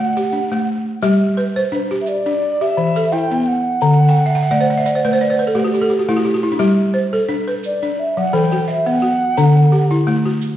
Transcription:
Already playing: balafon A3 F#4, ocarina F#5
0.17 balafon G4, shaker
0.33 balafon D4
0.52 balafon A3, shaker
1.02 balafon G3 G4, shaker
1.37 balafon B4
1.56 balafon C5
1.72 balafon D4, ocarina B4, shaker
1.91 balafon G4
2.01 ocarina E5
2.06 ocarina D5, shaker
2.26 balafon D4, shaker
2.61 balafon G4, ocarina E5
2.77 balafon E3
2.96 balafon A4, shaker
3.12 balafon E4, ocarina G5
3.31 balafon B3, shaker
3.48 ocarina F#5
3.81 balafon D3, shaker
4.09 balafon G5
4.17 balafon F#5
4.26 balafon E5
4.35 balafon F#5
4.43 balafon E5
4.51 balafon A3 D5
4.61 balafon C5
4.70 balafon D5
4.78 balafon E5
4.86 balafon D5, shaker
4.95 balafon C5
5.05 balafon A3 B4
5.13 balafon C5
5.21 balafon D5
5.30 balafon C5
5.39 balafon B4, shaker
5.47 balafon A4
5.55 balafon A3 G4
5.64 balafon F#4
5.74 balafon G4, shaker
5.81 balafon A4
5.90 balafon G4
5.99 balafon F#4
6.09 balafon A3 E4
6.16 balafon F#4
6.25 balafon G4
6.34 balafon F#4
6.43 balafon E4
6.52 balafon D4
6.59 balafon G3 G4, shaker
6.94 balafon C5
7.13 balafon A4
7.29 balafon D4, shaker
7.48 balafon B4
7.63 ocarina D5, shaker
7.83 balafon D4, shaker
7.99 ocarina E5
8.17 balafon F#3, ocarina F#5
8.33 balafon E3 A4, ocarina G5
8.52 balafon F#4, shaker
8.68 balafon E5, ocarina E5
8.86 balafon B3, ocarina F#5, shaker
9.02 balafon F#4
9.37 balafon D3 D4, shaker
9.72 balafon G4
9.91 balafon E4
10.07 balafon A3, shaker
10.25 balafon F#4
10.42 shaker

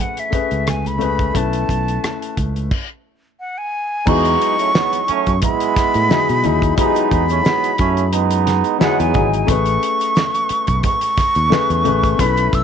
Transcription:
Already playing: grand piano A3 C#4 G#4 B4
0.01 flute F#5
0.17 flute E5, closed hi-hat
0.30 grand piano A3 C#4 G#4 B4, muted fingered electric bass stroke, kick, cross-stick, closed hi-hat, muted conga
0.51 fingered electric bass C#2, closed hi-hat
0.67 flute G#5, cross-stick, closed hi-hat, high conga
0.85 flute B5, closed hi-hat, high conga
0.98 grand piano A3 C#4 G#4 B4, closed hi-hat, high conga
1.19 kick, closed hi-hat
1.34 fingered electric bass B1, grand piano A3 C#4 E4 B4, flute A5, kick, closed hi-hat, muted conga
1.53 closed hi-hat
1.69 fingered electric bass B1, kick, closed hi-hat
1.88 closed hi-hat
2.04 cross-stick, closed hi-hat, high conga
2.22 closed hi-hat
2.37 fingered electric bass C#2, kick, closed hi-hat
2.56 closed hi-hat
2.71 kick, crash
3.40 flute F#5
3.58 flute G#5
4.06 fingered electric bass E2, grand piano F#3 D#4 E4 G#4, trombone section G#3 B3 D#4, flute C#6, kick, crash, muted conga, shaker
4.24 closed hi-hat, shaker
4.41 closed hi-hat, shaker
4.59 trombone section F#3 A3 C#4, closed hi-hat, shaker
4.74 trombone section F#3 G#3 B3, snare, high conga, shaker
4.93 closed hi-hat, shaker
5.08 trombone section F#3 A3 C#4, muted fingered electric bass stroke, closed hi-hat
5.27 fingered electric bass F#2, kick, closed hi-hat, shaker
5.42 trombone section G#3 B3 E4, flute B5, kick, closed hi-hat, muted conga, low conga, shaker
5.60 closed hi-hat, shaker
5.76 muted fingered electric bass stroke, kick, snare, closed hi-hat, muted conga, shaker
5.94 fingered electric bass A2, closed hi-hat, shaker
6.09 grand piano F#3 D#4 E4 G#4, snare, high conga, shaker
6.29 fingered electric bass B2, closed hi-hat, shaker
6.43 fingered electric bass D#2, grand piano F#3 D#4 E4 G#4, closed hi-hat, high conga
6.62 kick, closed hi-hat, shaker
6.76 grand piano F#3 D#4 E4, trombone section G#3 B3 D#4, flute B5, kick, closed hi-hat, muted conga, shaker
6.80 grand piano G4
6.86 grand piano G#4
6.94 closed hi-hat, shaker
7.11 fingered electric bass E2, flute B5, kick, closed hi-hat, shaker
7.29 trombone section F#3 A3 C#4, closed hi-hat, shaker
7.45 trombone section F#3 G#3 B3, snare, high conga, shaker
7.64 closed hi-hat, shaker
7.78 fingered electric bass F#2, trombone section F#3 A3 C#4, kick, closed hi-hat
7.97 closed hi-hat, shaker
8.13 trombone section G#3 B3 D#4, closed hi-hat, shaker
8.31 closed hi-hat, shaker
8.47 snare, closed hi-hat, muted conga, shaker
8.64 closed hi-hat, shaker
8.78 grand piano F#3 D#4 E4 G#4, trombone section F#3 G#3 B3, flute F#5, snare, high conga, shaker
9.00 fingered electric bass E2, flute G#5, closed hi-hat, shaker
9.13 fingered electric bass G#1, grand piano F#3 D#4 E4 G#4, kick, closed hi-hat, high conga
9.33 closed hi-hat, shaker
9.47 fingered electric bass A1, grand piano A3 C#4 G#4 B4, flute C#6, kick, closed hi-hat, muted conga, shaker
9.66 closed hi-hat, shaker
9.83 closed hi-hat, shaker
10.00 closed hi-hat, shaker
10.15 snare, high conga, shaker
10.35 closed hi-hat, shaker
10.49 muted fingered electric bass stroke, closed hi-hat
10.67 fingered electric bass B1, kick, closed hi-hat, shaker
10.83 flute C#6, kick, closed hi-hat, muted conga, low conga, shaker
11.01 closed hi-hat, shaker
11.17 muted fingered electric bass stroke, kick, snare, closed hi-hat, muted conga, shaker
11.35 fingered electric bass D#2, closed hi-hat, shaker
11.50 grand piano A3 C#4 G#4 B4, snare, high conga, shaker
11.70 fingered electric bass E2, closed hi-hat, shaker
11.84 fingered electric bass A1, grand piano A3 C#4 G#4 B4, closed hi-hat, high conga
12.03 kick, closed hi-hat, shaker
12.18 fingered electric bass B1, grand piano A3 C#4 E4 B4, flute B5, kick, closed hi-hat, muted conga, shaker
12.37 closed hi-hat, shaker
12.53 fingered electric bass B1, flute E6, kick, closed hi-hat, shaker

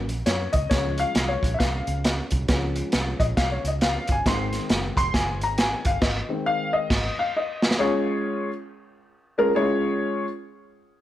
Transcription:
0.09 fingered electric bass A#1, closed hi-hat
0.26 fingered electric bass F#2, upright piano C#5, snare, closed hi-hat
0.53 fingered electric bass C#2, upright piano D#5, kick, closed hi-hat
0.70 fingered electric bass C#2, upright piano F3 G#3 C#4 C#5, kick, snare, closed hi-hat
0.98 upright piano F5, closed hi-hat
1.15 fingered electric bass C2, snare, closed hi-hat
1.28 upright piano C#5
1.43 fingered electric bass A#1, kick, closed hi-hat
1.54 upright piano E5
1.59 fingered electric bass C2, upright piano F5, kick, snare, closed hi-hat
1.87 fingered electric bass C#2, closed hi-hat
2.04 snare, closed hi-hat
2.31 fingered electric bass C2, kick, closed hi-hat
2.48 fingered electric bass C#2, upright piano F3 G#3 C#4, kick, snare, closed hi-hat
2.76 closed hi-hat
2.92 fingered electric bass C2, snare, closed hi-hat
3.20 fingered electric bass A#1, upright piano D#5, kick, closed hi-hat
3.37 fingered electric bass C2, upright piano F5, kick, snare, closed hi-hat
3.52 upright piano C#5
3.64 fingered electric bass C#2, upright piano D#5, closed hi-hat
3.81 upright piano F5, snare, closed hi-hat
4.08 fingered electric bass G1, kick, closed hi-hat
4.12 upright piano G#5
4.26 fingered electric bass G#1, upright piano D#3 G#3 C4 C6, kick, snare, closed hi-hat
4.53 snare, closed hi-hat
4.70 fingered electric bass F#1, snare, closed hi-hat
4.97 fingered electric bass F1, upright piano C6, kick, closed hi-hat
5.14 fingered electric bass F#1, upright piano G#5, kick, snare, closed hi-hat
5.41 fingered electric bass G#1, upright piano A#5, closed hi-hat
5.58 upright piano G#5, snare, closed hi-hat
5.85 fingered electric bass G1, upright piano F5, kick, closed hi-hat
6.01 fingered electric bass G#1, upright piano D#5, kick, snare, crash
6.29 upright piano D#3 G#3 C4
6.46 upright piano F5
6.73 upright piano D#5
6.90 fingered electric bass G#1, kick, snare, crash
7.19 upright piano F5
7.37 upright piano D#5
7.62 snare
7.71 snare
7.79 upright piano G#3 C#4 F4 G#4 C#5
9.38 upright piano G#3 C#4 F4 G#4 A#4
9.55 upright piano G#3 C#4 E4 G#4 C#5
9.61 upright piano F4

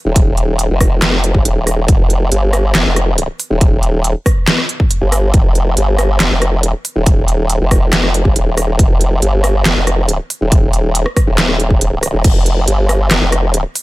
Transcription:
0.05 wobble bass D#1
0.16 kick, closed hi-hat
0.37 closed hi-hat
0.59 closed hi-hat
0.70 wobble bass F1
0.81 kick, cross-stick, open hi-hat
1.02 snare, clap, closed hi-hat
1.13 cross-stick
1.24 closed hi-hat
1.34 wobble bass G1, kick
1.45 wobble bass D#1, closed hi-hat
1.67 cross-stick, open hi-hat
1.88 wobble bass F1, kick, closed hi-hat
2.10 closed hi-hat
2.32 wobble bass G1, closed hi-hat
2.53 cross-stick, open hi-hat
2.75 wobble bass F1, snare, clap, closed hi-hat
2.86 wobble bass F1
2.96 cross-stick, closed hi-hat
3.18 closed hi-hat
3.40 open hi-hat
3.50 wobble bass D#1
3.61 kick, closed hi-hat
3.83 closed hi-hat
4.04 closed hi-hat
4.26 kick, cross-stick, open hi-hat
4.47 snare, clap, closed hi-hat
4.58 cross-stick
4.69 closed hi-hat
4.80 kick
4.91 closed hi-hat
5.01 wobble bass G1
5.12 cross-stick, open hi-hat
5.34 wobble bass F1, kick, closed hi-hat
5.55 closed hi-hat
5.77 wobble bass G1, closed hi-hat
5.99 cross-stick, open hi-hat
6.20 wobble bass F1, snare, clap, closed hi-hat
6.31 wobble bass F1
6.42 cross-stick, closed hi-hat
6.63 closed hi-hat
6.85 open hi-hat
6.96 wobble bass D#1
7.06 kick, closed hi-hat
7.28 closed hi-hat
7.50 closed hi-hat
7.60 wobble bass F1
7.71 kick, cross-stick, open hi-hat
7.93 snare, clap, closed hi-hat
8.04 cross-stick
8.14 closed hi-hat
8.25 wobble bass G1, kick
8.36 wobble bass D#1, closed hi-hat
8.57 cross-stick, open hi-hat
8.79 wobble bass F1, kick, closed hi-hat
9.01 closed hi-hat
9.22 wobble bass G1, closed hi-hat
9.44 cross-stick, open hi-hat
9.65 wobble bass F1, snare, clap, closed hi-hat
9.76 wobble bass F1
9.87 cross-stick, closed hi-hat
10.09 closed hi-hat
10.30 open hi-hat
10.41 wobble bass D#1
10.52 kick, closed hi-hat
10.73 closed hi-hat
10.95 closed hi-hat
11.06 cross-stick
11.17 kick, cross-stick, open hi-hat
11.27 wobble bass D#1
11.38 snare, clap, closed hi-hat
11.49 cross-stick
11.60 closed hi-hat
11.70 kick
11.81 closed hi-hat
12.03 cross-stick, open hi-hat
12.14 wobble bass D#1
12.24 wobble bass F1, kick, closed hi-hat, crash
12.46 closed hi-hat
12.68 wobble bass G1, closed hi-hat
12.89 cross-stick, open hi-hat
13.11 wobble bass F1, snare, clap, closed hi-hat
13.22 wobble bass F1
13.32 cross-stick, closed hi-hat
13.54 closed hi-hat
13.75 open hi-hat

